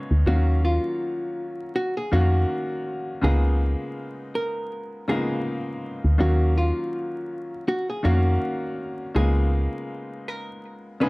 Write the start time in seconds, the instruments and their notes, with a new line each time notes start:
Already playing: upright piano C#3 G#3 B3 D#4 F4 C#5
0.11 fm bass D2
0.26 fm bass D#2, upright piano D#3 F#3 A#3 C#4 F5, hollow-body jazz guitar F#4
0.65 hollow-body jazz guitar F4
1.76 hollow-body jazz guitar F#4
1.97 hollow-body jazz guitar G#4
2.12 fm bass F2, upright piano D#3 A#3 C#4 F#4 F5, hollow-body jazz guitar F#4
3.21 fm bass C#2, upright piano C#3 G#3 A#3 B3 D#4 F4, hollow-body jazz guitar G#4
4.35 hollow-body jazz guitar A#4
5.08 upright piano C#3 G#3 A#3 B3 D#4 F4, hollow-body jazz guitar G#4
6.04 fm bass D2
6.18 fm bass D#2, upright piano D#3 F#3 A#3 C#4 F5, hollow-body jazz guitar F#4
6.57 hollow-body jazz guitar F4
7.68 hollow-body jazz guitar F#4
7.90 hollow-body jazz guitar G#4
8.03 fm bass F2, upright piano D#3 A#3 C#4 F#4 F5, hollow-body jazz guitar F#4
9.15 fm bass C#2, upright piano C#3 G#3 A#3 B3 D#4 F4, hollow-body jazz guitar G#4
10.28 hollow-body jazz guitar A#4
11.00 upright piano C#3 G#3 B3 C#4 D#4 G#4, hollow-body jazz guitar B4